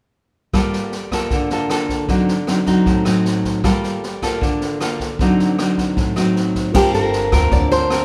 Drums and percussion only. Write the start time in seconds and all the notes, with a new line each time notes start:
0.53 kick, cross-stick, snare
0.73 snare
0.92 snare
1.11 kick, cross-stick, snare
1.30 kick, snare
1.50 snare
1.70 cross-stick, snare
1.89 kick, snare
2.08 kick, snare
2.28 snare
2.47 cross-stick, snare
2.66 kick, snare
2.86 kick, snare
3.05 cross-stick, snare
3.25 snare
3.45 kick, snare
3.64 kick, cross-stick, snare
3.83 snare
4.03 snare
4.22 kick, cross-stick, snare
4.42 kick, snare
4.61 snare
4.81 cross-stick, snare
5.00 kick, snare
5.19 kick, snare
5.39 snare
5.59 cross-stick, snare
5.78 kick, snare
5.97 kick, snare
6.16 cross-stick, snare
6.36 snare
6.55 kick, snare
6.75 kick, cross-stick, snare, crash
6.94 snare
7.13 snare
7.32 kick, cross-stick, snare
7.51 kick, snare
7.71 snare
7.90 cross-stick, snare